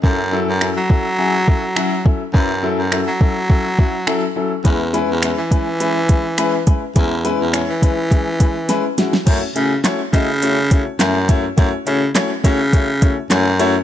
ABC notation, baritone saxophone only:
X:1
M:4/4
L:1/16
Q:1/4=104
K:F#m
V:1 name="Baritone saxophone" clef=bass
F,,3 F,,2 F,8- F,3 | F,,3 F,,2 F,8- F, z2 | E,,3 E,,2 E,8- E,3 | E,,3 E,,2 E,8- E, z2 |
F,, z C,2 z2 C,6 F,,4 | F,, z C,2 z2 C,6 F,,4 |]